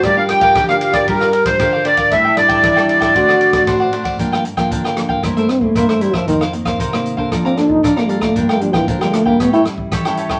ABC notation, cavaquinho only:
X:1
M:4/4
L:1/16
Q:1/4=115
K:Dm
V:1 name="Cavaquinho"
[GBdf] [Bdf] z [Bdf] [GBdf] [Bdf]2 [Bdf] [GBdf] [Bdf] z2 [GBdf] [Bdf] [GBdf] [Bdf] | [DAeg] [Aeg] z [Aeg] [DAeg] [Aeg]2 [Aeg] [Dcd^f] [cdf] z2 [Dcdf] [cdf] [Dcdf] [cdf] | [K:Gm] [DBfg] [Bfg] z [Bfg] [DBfg] [Bfg]2 [Bfg] [=EBc=e] [Bce] z2 [EBce] [Bce] [EBce] [Bce] | [EBcf] [Bcf] z [Bcf] [EBcf] [Bcf]2 [Bcf] [Adfb] [dfb] z2 [Adfb] [dfb] [Adfb] [dfb] |
[DBfg] [Bfg] z [Bfg] [DBfg] [Bfg]2 [Bfg] [GA^cg] [Acg] z2 [GAcg] [Acg] [GAcg] [Acg] |]